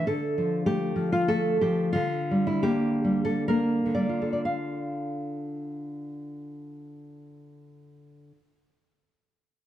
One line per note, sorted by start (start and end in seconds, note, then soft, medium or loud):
0.07 1.92 D3 medium
0.07 0.64 A4 loud
0.38 0.95 F3 medium
0.66 1.28 A3 medium
0.66 1.10 G4 loud
0.96 1.61 F3 medium
1.12 1.28 F4 loud
1.28 1.94 A3 medium
1.28 1.60 A4 loud
1.61 1.95 F3 medium
1.61 1.92 G4 loud
1.93 3.84 D3 medium
1.93 2.44 F4 loud
2.31 3.03 G3 medium
2.47 2.66 E4 medium
2.63 3.48 A#3 medium
2.63 3.23 G4 loud
3.04 3.93 G3 medium
3.25 3.48 A4 loud
3.48 4.45 A#3 medium
3.48 3.95 A#4 loud
3.86 8.31 D3 medium
3.94 4.09 G3 medium
3.94 4.31 D5 medium
4.09 8.55 F4 medium
4.22 8.67 A4 medium
4.33 4.45 D5 medium
4.45 8.91 F5 medium